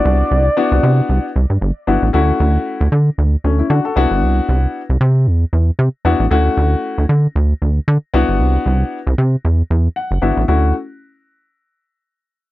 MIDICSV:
0, 0, Header, 1, 4, 480
1, 0, Start_track
1, 0, Key_signature, 2, "major"
1, 0, Tempo, 521739
1, 47, Time_signature, 4, 2, 24, 8
1, 11516, End_track
2, 0, Start_track
2, 0, Title_t, "Soft synth lead"
2, 0, Program_c, 0, 80
2, 0, Note_on_c, 0, 74, 94
2, 1453, Note_off_c, 0, 74, 0
2, 11516, End_track
3, 0, Start_track
3, 0, Title_t, "Grand piano"
3, 0, Program_c, 1, 0
3, 0, Note_on_c, 1, 59, 75
3, 0, Note_on_c, 1, 62, 78
3, 0, Note_on_c, 1, 64, 71
3, 0, Note_on_c, 1, 66, 86
3, 394, Note_off_c, 1, 59, 0
3, 395, Note_off_c, 1, 62, 0
3, 396, Note_off_c, 1, 64, 0
3, 397, Note_off_c, 1, 66, 0
3, 522, Note_on_c, 1, 59, 90
3, 524, Note_on_c, 1, 62, 77
3, 528, Note_on_c, 1, 64, 74
3, 528, Note_on_c, 1, 66, 96
3, 1176, Note_off_c, 1, 59, 0
3, 1177, Note_off_c, 1, 62, 0
3, 1179, Note_off_c, 1, 64, 0
3, 1179, Note_off_c, 1, 66, 0
3, 1723, Note_on_c, 1, 59, 77
3, 1724, Note_on_c, 1, 62, 72
3, 1727, Note_on_c, 1, 64, 74
3, 1730, Note_on_c, 1, 66, 80
3, 1895, Note_off_c, 1, 59, 0
3, 1895, Note_off_c, 1, 62, 0
3, 1897, Note_off_c, 1, 64, 0
3, 1899, Note_off_c, 1, 66, 0
3, 1961, Note_on_c, 1, 57, 84
3, 1964, Note_on_c, 1, 61, 82
3, 1965, Note_on_c, 1, 64, 86
3, 1967, Note_on_c, 1, 66, 93
3, 2616, Note_off_c, 1, 57, 0
3, 2617, Note_off_c, 1, 61, 0
3, 2618, Note_off_c, 1, 64, 0
3, 2618, Note_off_c, 1, 66, 0
3, 3169, Note_on_c, 1, 61, 71
3, 3175, Note_on_c, 1, 57, 60
3, 3294, Note_off_c, 1, 61, 0
3, 3299, Note_off_c, 1, 57, 0
3, 3302, Note_on_c, 1, 64, 67
3, 3307, Note_on_c, 1, 61, 53
3, 3402, Note_off_c, 1, 64, 0
3, 3404, Note_on_c, 1, 66, 75
3, 3405, Note_off_c, 1, 61, 0
3, 3410, Note_on_c, 1, 62, 61
3, 3532, Note_off_c, 1, 66, 0
3, 3536, Note_off_c, 1, 62, 0
3, 3542, Note_on_c, 1, 69, 75
3, 3546, Note_on_c, 1, 66, 52
3, 3636, Note_off_c, 1, 66, 0
3, 3642, Note_on_c, 1, 59, 88
3, 3646, Note_on_c, 1, 62, 80
3, 3648, Note_on_c, 1, 64, 82
3, 3650, Note_on_c, 1, 66, 108
3, 3770, Note_off_c, 1, 69, 0
3, 4418, Note_off_c, 1, 59, 0
3, 4420, Note_off_c, 1, 62, 0
3, 4421, Note_off_c, 1, 64, 0
3, 4422, Note_off_c, 1, 66, 0
3, 5564, Note_on_c, 1, 59, 85
3, 5565, Note_on_c, 1, 62, 79
3, 5568, Note_on_c, 1, 64, 81
3, 5569, Note_on_c, 1, 66, 94
3, 5736, Note_off_c, 1, 59, 0
3, 5736, Note_off_c, 1, 62, 0
3, 5738, Note_off_c, 1, 64, 0
3, 5738, Note_off_c, 1, 66, 0
3, 5803, Note_on_c, 1, 57, 89
3, 5805, Note_on_c, 1, 61, 80
3, 5808, Note_on_c, 1, 64, 78
3, 5810, Note_on_c, 1, 66, 104
3, 6456, Note_off_c, 1, 57, 0
3, 6458, Note_off_c, 1, 61, 0
3, 6459, Note_off_c, 1, 64, 0
3, 6460, Note_off_c, 1, 66, 0
3, 7484, Note_on_c, 1, 59, 98
3, 7487, Note_on_c, 1, 64, 83
3, 7488, Note_on_c, 1, 62, 82
3, 7491, Note_on_c, 1, 66, 101
3, 8259, Note_off_c, 1, 59, 0
3, 8261, Note_off_c, 1, 62, 0
3, 8261, Note_off_c, 1, 64, 0
3, 8263, Note_off_c, 1, 66, 0
3, 9165, Note_on_c, 1, 78, 72
3, 9389, Note_off_c, 1, 78, 0
3, 9400, Note_on_c, 1, 59, 81
3, 9402, Note_on_c, 1, 62, 72
3, 9403, Note_on_c, 1, 76, 63
3, 9405, Note_on_c, 1, 64, 74
3, 9406, Note_on_c, 1, 66, 83
3, 9573, Note_off_c, 1, 59, 0
3, 9575, Note_off_c, 1, 62, 0
3, 9576, Note_off_c, 1, 64, 0
3, 9577, Note_off_c, 1, 66, 0
3, 9628, Note_off_c, 1, 76, 0
3, 9643, Note_on_c, 1, 64, 76
3, 9644, Note_on_c, 1, 66, 89
3, 9645, Note_on_c, 1, 57, 73
3, 9645, Note_on_c, 1, 61, 67
3, 9868, Note_off_c, 1, 64, 0
3, 9869, Note_off_c, 1, 57, 0
3, 9869, Note_off_c, 1, 61, 0
3, 9869, Note_off_c, 1, 66, 0
3, 11516, End_track
4, 0, Start_track
4, 0, Title_t, "Analog synth bass"
4, 0, Program_c, 2, 38
4, 47, Note_on_c, 2, 36, 109
4, 213, Note_off_c, 2, 36, 0
4, 286, Note_on_c, 2, 36, 105
4, 453, Note_off_c, 2, 36, 0
4, 659, Note_on_c, 2, 36, 108
4, 733, Note_off_c, 2, 36, 0
4, 765, Note_on_c, 2, 48, 104
4, 932, Note_off_c, 2, 48, 0
4, 1005, Note_on_c, 2, 36, 94
4, 1099, Note_off_c, 2, 36, 0
4, 1249, Note_on_c, 2, 36, 97
4, 1341, Note_off_c, 2, 36, 0
4, 1379, Note_on_c, 2, 43, 78
4, 1453, Note_off_c, 2, 43, 0
4, 1485, Note_on_c, 2, 31, 92
4, 1579, Note_off_c, 2, 31, 0
4, 1726, Note_on_c, 2, 31, 78
4, 1820, Note_off_c, 2, 31, 0
4, 1862, Note_on_c, 2, 33, 90
4, 1935, Note_off_c, 2, 33, 0
4, 1970, Note_on_c, 2, 38, 103
4, 2135, Note_off_c, 2, 38, 0
4, 2207, Note_on_c, 2, 38, 103
4, 2373, Note_off_c, 2, 38, 0
4, 2582, Note_on_c, 2, 38, 101
4, 2655, Note_off_c, 2, 38, 0
4, 2685, Note_on_c, 2, 50, 101
4, 2852, Note_off_c, 2, 50, 0
4, 2927, Note_on_c, 2, 38, 93
4, 3094, Note_off_c, 2, 38, 0
4, 3167, Note_on_c, 2, 38, 85
4, 3333, Note_off_c, 2, 38, 0
4, 3403, Note_on_c, 2, 50, 105
4, 3497, Note_off_c, 2, 50, 0
4, 3646, Note_on_c, 2, 36, 99
4, 3740, Note_off_c, 2, 36, 0
4, 3779, Note_on_c, 2, 31, 84
4, 3886, Note_on_c, 2, 36, 108
4, 3900, Note_off_c, 2, 31, 0
4, 4053, Note_off_c, 2, 36, 0
4, 4128, Note_on_c, 2, 36, 108
4, 4294, Note_off_c, 2, 36, 0
4, 4503, Note_on_c, 2, 36, 102
4, 4576, Note_off_c, 2, 36, 0
4, 4605, Note_on_c, 2, 48, 113
4, 4847, Note_on_c, 2, 40, 94
4, 4861, Note_off_c, 2, 48, 0
4, 5013, Note_off_c, 2, 40, 0
4, 5086, Note_on_c, 2, 40, 88
4, 5252, Note_off_c, 2, 40, 0
4, 5324, Note_on_c, 2, 48, 99
4, 5418, Note_off_c, 2, 48, 0
4, 5564, Note_on_c, 2, 40, 90
4, 5658, Note_off_c, 2, 40, 0
4, 5700, Note_on_c, 2, 33, 89
4, 5774, Note_off_c, 2, 33, 0
4, 5804, Note_on_c, 2, 38, 116
4, 5971, Note_off_c, 2, 38, 0
4, 6046, Note_on_c, 2, 38, 108
4, 6213, Note_off_c, 2, 38, 0
4, 6421, Note_on_c, 2, 38, 89
4, 6494, Note_off_c, 2, 38, 0
4, 6524, Note_on_c, 2, 50, 95
4, 6691, Note_off_c, 2, 50, 0
4, 6766, Note_on_c, 2, 38, 98
4, 6933, Note_off_c, 2, 38, 0
4, 7008, Note_on_c, 2, 38, 85
4, 7174, Note_off_c, 2, 38, 0
4, 7247, Note_on_c, 2, 50, 110
4, 7340, Note_off_c, 2, 50, 0
4, 7487, Note_on_c, 2, 36, 109
4, 7580, Note_off_c, 2, 36, 0
4, 7621, Note_on_c, 2, 31, 76
4, 7724, Note_on_c, 2, 36, 121
4, 7738, Note_off_c, 2, 31, 0
4, 7891, Note_off_c, 2, 36, 0
4, 7965, Note_on_c, 2, 36, 99
4, 8132, Note_off_c, 2, 36, 0
4, 8341, Note_on_c, 2, 36, 101
4, 8414, Note_off_c, 2, 36, 0
4, 8447, Note_on_c, 2, 48, 104
4, 8613, Note_off_c, 2, 48, 0
4, 8691, Note_on_c, 2, 40, 90
4, 8856, Note_off_c, 2, 40, 0
4, 8929, Note_on_c, 2, 40, 93
4, 9094, Note_off_c, 2, 40, 0
4, 9300, Note_on_c, 2, 30, 97
4, 9374, Note_off_c, 2, 30, 0
4, 9405, Note_on_c, 2, 31, 91
4, 9499, Note_off_c, 2, 31, 0
4, 9539, Note_on_c, 2, 33, 92
4, 9613, Note_off_c, 2, 33, 0
4, 9645, Note_on_c, 2, 38, 94
4, 9869, Note_off_c, 2, 38, 0
4, 11516, End_track
0, 0, End_of_file